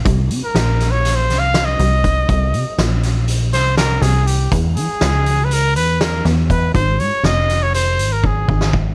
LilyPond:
<<
  \new Staff \with { instrumentName = "Trumpet" } { \time 9/8 \key c \phrygian \tempo 4. = 81 r8. bes'4 des''8 c''8 f''8 ees''4~ ees''16~ | ees''4~ ees''16 r4 r16 c''8 bes'8 aes'8 g'8 | r8 gis'4~ gis'16. b'32 bes'8 b'8 bes'8 r8 b'8 | c''8 des''8 ees''8. des''16 c''8. bes'16 aes'4 r8 | }
  \new Staff \with { instrumentName = "Analog synth bass" } { \clef bass \time 9/8 \key c \phrygian c,8 c16 r16 bes,,4. c,4 c,4 | c,8 c16 r16 bes,,4. c,4 c,4 | e,8 e16 r16 des,4. e,4 e,4 | aes,,8 aes,16 r16 f,,4. aes,,4 aes,,4 | }
  \new DrumStaff \with { instrumentName = "Drums" } \drummode { \time 9/8 <hh bd>8 hh8 <hh sn>8 <hh sn>8 <hh sn>8 <hh sn>8 <hh sn>8 hh8 <hh bd>8 | <hh bd>8 hh8 <hh sn>8 <hh sn>8 hh8 <hh sn>8 <hh sn>8 <hh sn>8 hh8 | <hh bd>8 hh8 <hh sn>8 hh8 hh8 hh8 <hh sn>8 <hh sn>8 <hh bd>8 | <hh bd>8 hh8 <hh sn>8 <hh sn>8 hh8 hh8 bd8 bd16 sn16 bd8 | }
>>